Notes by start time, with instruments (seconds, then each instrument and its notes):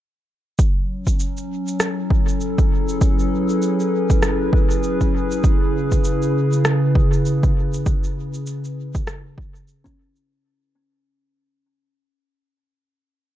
0.58 ambient pad F#3, kick, shaker
0.89 ambient pad C#4
1.07 kick, shaker
1.20 shaker
1.37 shaker
1.68 shaker
1.79 ambient pad E4, cross-stick, shaker
1.95 ambient pad A4
2.10 kick
2.28 shaker
2.41 ambient pad G#4, shaker
2.58 kick, shaker
2.78 ambient pad B4
2.89 shaker
3.01 kick, shaker
3.19 shaker
3.49 shaker
3.62 shaker
3.80 shaker
4.10 kick, shaker
4.23 cross-stick, shaker
4.53 kick
4.71 shaker
4.83 shaker
5.01 kick, shaker
5.31 shaker
5.44 ambient pad C#3, kick, shaker
5.92 kick, shaker
6.04 shaker
6.22 shaker
6.52 shaker
6.65 cross-stick, shaker
6.95 kick
7.13 shaker
7.26 shaker
7.43 kick, shaker
7.74 shaker
7.86 kick, shaker
8.04 shaker
8.34 shaker
8.47 shaker
8.64 shaker
8.95 kick, shaker
9.07 cross-stick, shaker
9.38 kick
9.55 shaker
9.68 shaker
9.84 kalimba C#4, kick, shaker
10.16 shaker